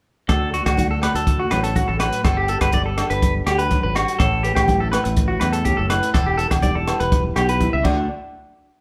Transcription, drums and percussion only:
0.29 kick medium
0.29 cross-stick medium
0.29 closed hi-hat soft
0.29 low agogo medium
0.54 closed hi-hat soft
0.66 kick medium
0.66 cross-stick medium
0.66 closed hi-hat soft
0.66 low agogo medium
0.77 kick medium
0.77 closed hi-hat soft
0.77 high conga medium
1.02 cross-stick medium
1.02 closed hi-hat medium
1.02 low agogo medium
1.15 closed hi-hat soft
1.27 kick medium
1.27 closed hi-hat medium
1.27 muted conga soft
1.50 cross-stick medium
1.50 closed hi-hat soft
1.50 muted conga soft
1.50 high conga medium
1.50 low agogo medium
1.64 closed hi-hat soft
1.75 kick medium
1.75 closed hi-hat soft
1.75 high conga medium
1.99 cross-stick medium
1.99 closed hi-hat medium
1.99 muted conga soft
1.99 low agogo medium
2.13 closed hi-hat soft
2.24 kick medium
2.24 cross-stick medium
2.24 closed hi-hat soft
2.24 low agogo medium
2.48 closed hi-hat soft
2.61 kick medium
2.61 cross-stick medium
2.61 closed hi-hat soft
2.61 low agogo medium
2.73 kick medium
2.73 closed hi-hat soft
2.73 high conga medium
2.98 cross-stick medium
2.98 closed hi-hat medium
2.98 low agogo medium
3.10 closed hi-hat soft
3.22 kick medium
3.22 closed hi-hat soft
3.22 muted conga soft
3.22 high conga medium
3.46 cross-stick medium
3.46 closed hi-hat soft
3.46 muted conga soft
3.46 low agogo medium
3.59 closed hi-hat soft
3.71 kick medium
3.71 closed hi-hat soft
3.71 high conga medium
3.95 cross-stick medium
3.95 closed hi-hat soft
3.95 muted conga soft
3.95 low agogo medium
4.08 closed hi-hat soft
4.19 kick medium
4.19 cross-stick medium
4.19 closed hi-hat soft
4.19 low agogo medium
4.44 closed hi-hat soft
4.56 kick medium
4.56 cross-stick medium
4.56 closed hi-hat soft
4.56 low agogo medium
4.68 kick medium
4.68 closed hi-hat soft
4.68 high conga medium
4.93 cross-stick medium
4.93 closed hi-hat medium
4.93 low agogo medium
5.05 closed hi-hat soft
5.17 kick loud
5.17 closed hi-hat medium
5.41 cross-stick medium
5.41 closed hi-hat soft
5.41 muted conga soft
5.41 high conga medium
5.41 low agogo medium
5.53 closed hi-hat medium
5.65 kick medium
5.65 closed hi-hat soft
5.65 high conga medium
5.90 cross-stick medium
5.90 closed hi-hat medium
5.90 muted conga soft
5.90 low agogo medium
6.03 closed hi-hat medium
6.14 kick medium
6.14 cross-stick medium
6.14 closed hi-hat medium
6.14 low agogo medium
6.39 closed hi-hat soft
6.51 kick medium
6.51 cross-stick medium
6.51 closed hi-hat soft
6.51 low agogo medium
6.62 kick medium
6.62 closed hi-hat soft
6.62 high conga medium
6.88 cross-stick medium
6.88 closed hi-hat soft
6.88 low agogo medium
7.00 closed hi-hat soft
7.12 kick medium
7.12 closed hi-hat medium
7.12 muted conga soft
7.12 high conga medium
7.36 cross-stick medium
7.36 closed hi-hat soft
7.36 muted conga soft
7.36 low agogo medium
7.49 closed hi-hat soft
7.60 kick medium
7.60 closed hi-hat soft
7.60 high conga medium
7.85 kick medium
7.85 crash medium
7.85 muted conga medium
7.85 low agogo medium

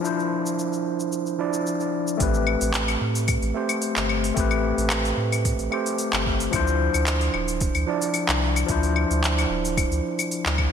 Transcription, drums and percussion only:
0.05 shaker soft
0.19 shaker soft
0.46 shaker medium
0.59 shaker soft
0.73 shaker soft
1.00 shaker medium
1.12 shaker medium
1.27 shaker soft
1.54 shaker medium
1.67 shaker soft
1.80 shaker soft
2.08 shaker medium
2.20 kick loud
2.20 open hi-hat medium
2.20 shaker medium
2.34 shaker soft
2.47 claves medium
2.61 open hi-hat soft
2.61 shaker medium
2.74 clap medium
2.74 open hi-hat medium
2.74 shaker medium
2.88 open hi-hat soft
2.88 claves medium
2.88 shaker soft
3.15 open hi-hat soft
3.15 shaker medium
3.28 kick loud
3.28 open hi-hat medium
3.28 claves medium
3.28 shaker medium
3.42 open hi-hat soft
3.42 shaker soft
3.69 open hi-hat soft
3.69 claves medium
3.69 shaker medium
3.82 open hi-hat medium
3.82 shaker medium
3.96 clap medium
3.96 open hi-hat soft
3.96 shaker soft
4.09 claves medium
4.24 open hi-hat soft
4.24 shaker medium
4.37 kick loud
4.37 open hi-hat medium
4.37 shaker medium
4.51 claves medium
4.51 shaker soft
4.78 open hi-hat soft
4.78 shaker medium
4.90 clap medium
4.90 open hi-hat medium
4.90 claves medium
4.90 shaker medium
5.05 open hi-hat soft
5.05 shaker soft
5.32 open hi-hat soft
5.32 claves medium
5.32 shaker medium
5.45 kick loud
5.45 open hi-hat medium
5.45 shaker medium
5.59 open hi-hat soft
5.59 shaker soft
5.72 claves medium
5.86 open hi-hat soft
5.86 shaker medium
5.98 open hi-hat medium
5.98 shaker medium
6.13 clap medium
6.13 open hi-hat soft
6.13 claves medium
6.13 shaker soft
6.26 kick loud
6.40 open hi-hat soft
6.40 shaker medium
6.53 kick loud
6.53 open hi-hat soft
6.53 claves medium
6.53 shaker medium
6.67 shaker soft
6.94 open hi-hat soft
6.94 claves medium
6.94 shaker medium
7.07 clap medium
7.07 open hi-hat medium
7.07 shaker medium
7.21 open hi-hat soft
7.21 shaker soft
7.34 claves medium
7.48 open hi-hat soft
7.48 shaker medium
7.61 kick loud
7.61 open hi-hat medium
7.61 shaker medium
7.75 open hi-hat soft
7.75 claves medium
7.75 shaker soft
8.02 open hi-hat soft
8.02 shaker medium
8.14 open hi-hat medium
8.14 claves medium
8.14 shaker medium
8.29 clap medium
8.29 open hi-hat soft
8.29 shaker soft
8.56 open hi-hat soft
8.56 claves medium
8.56 shaker medium
8.69 kick loud
8.69 open hi-hat medium
8.69 shaker medium
8.83 open hi-hat soft
8.83 shaker soft
8.96 claves medium
9.11 open hi-hat soft
9.11 shaker medium
9.24 clap medium
9.24 open hi-hat soft
9.24 shaker medium
9.38 open hi-hat soft
9.38 claves medium
9.38 shaker soft
9.65 open hi-hat soft
9.65 shaker medium
9.77 kick loud
9.77 open hi-hat medium
9.77 claves medium
9.77 shaker medium
9.92 open hi-hat soft
9.92 shaker soft
10.19 open hi-hat soft
10.19 claves medium
10.19 shaker medium
10.31 open hi-hat medium
10.31 shaker medium
10.46 clap medium
10.46 open hi-hat soft
10.46 shaker soft
10.58 kick loud
10.58 claves medium

